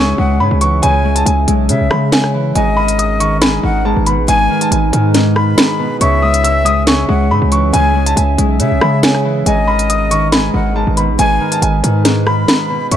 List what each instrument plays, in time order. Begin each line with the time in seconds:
Already playing: 808-style bass C#2, harp C#3 G#3, ambient pad C#4 G#4 E5, flute G#5, grand piano C#6
0.18 808-style bass C#2, harp G#3, flute F#5
0.40 808-style bass G#2, harp C#3, grand piano B5
0.51 808-style bass C#2
0.61 harp E3, grand piano C#6, closed hi-hat
0.82 808-style bass C#2, harp C#3, grand piano G#5, flute G#5, closed hi-hat
1.04 harp G#3
1.15 grand piano A5, closed hi-hat
1.26 808-style bass C#2, grand piano G#5, closed hi-hat
1.48 808-style bass B1, harp G#3, closed hi-hat
1.69 808-style bass C#3, harp C#3, flute E5, closed hi-hat
1.81 808-style bass B1
1.91 808-style bass C#3, harp G#3, grand piano B5, cross-stick
2.12 harp C#3, grand piano G#5, snare, closed hi-hat
2.24 cross-stick
2.34 harp E3
2.55 808-style bass G#1, harp G#2, ambient pad G#3 D#4 B4, flute D#5, grand piano G#5, closed hi-hat
2.77 harp D#3, grand piano B5
2.88 closed hi-hat
2.99 grand piano D#6, closed hi-hat
3.20 harp D#3, grand piano C#6, closed hi-hat
3.41 harp G#2, flute G#5, grand piano B5, snare, closed hi-hat
3.63 808-style bass G#1, harp D#3, flute F#5
3.85 harp G#2, grand piano A5
3.96 808-style bass G#1
4.06 harp B2, grand piano B5, closed hi-hat
4.18 808-style bass A1
4.28 808-style bass G#1, harp G#2, flute G#5, grand piano G#5, closed hi-hat
4.50 harp D#3
4.61 grand piano A5, closed hi-hat
4.71 808-style bass G#1, grand piano G#5, closed hi-hat
4.93 808-style bass G#2, harp D#3, closed hi-hat
5.14 harp G#2, snare, closed hi-hat
5.36 harp D#3, flute B5, grand piano B5, cross-stick
5.58 harp G#2, grand piano B5, snare, closed hi-hat
5.79 harp B2
6.01 808-style bass C#2, harp C#3, ambient pad C#4 G#4 E5, flute E5, grand piano C#6, closed hi-hat
6.22 harp G#3, grand piano D#6
6.34 closed hi-hat
6.44 grand piano E6, closed hi-hat
6.65 harp G#3, grand piano D#6, closed hi-hat
6.87 harp C#3, flute G#5, grand piano C#6, snare, closed hi-hat
7.09 808-style bass C#2, harp G#3, flute F#5
7.30 808-style bass G#2, harp C#3, grand piano B5
7.42 808-style bass C#2
7.52 harp E3, grand piano C#6, closed hi-hat
7.73 808-style bass C#2, harp C#3, grand piano G#5, flute G#5, closed hi-hat
7.95 harp G#3
8.06 grand piano A5, closed hi-hat
8.16 808-style bass C#2, grand piano G#5, closed hi-hat
8.38 808-style bass B1, harp G#3, closed hi-hat
8.60 808-style bass C#3, harp C#3, flute E5, closed hi-hat
8.71 808-style bass B1
8.81 808-style bass C#3, harp G#3, grand piano B5, cross-stick
9.03 harp C#3, grand piano G#5, snare, closed hi-hat
9.15 cross-stick
9.25 harp E3
9.46 808-style bass G#1, harp G#2, ambient pad G#3 D#4 B4, flute D#5, grand piano G#5, closed hi-hat
9.68 harp D#3, grand piano B5
9.79 closed hi-hat
9.89 grand piano D#6, closed hi-hat
10.11 harp D#3, grand piano C#6, closed hi-hat
10.32 harp G#2, flute G#5, grand piano B5, snare, closed hi-hat
10.54 808-style bass G#1, harp D#3, flute F#5
10.76 harp G#2, grand piano A5
10.87 808-style bass G#1
10.97 harp B2, grand piano B5, closed hi-hat
11.09 808-style bass A1
11.19 808-style bass G#1, harp G#2, flute G#5, grand piano G#5, closed hi-hat
11.40 harp D#3
11.52 grand piano A5, closed hi-hat
11.62 808-style bass G#1, grand piano G#5, closed hi-hat
11.83 808-style bass G#2, harp D#3, closed hi-hat
12.05 harp G#2, snare, closed hi-hat
12.27 harp D#3, flute B5, grand piano B5, cross-stick
12.48 harp G#2, grand piano B5, snare, closed hi-hat
12.70 harp B2
12.91 808-style bass C#2, harp C#3, flute E5, grand piano C#6, closed hi-hat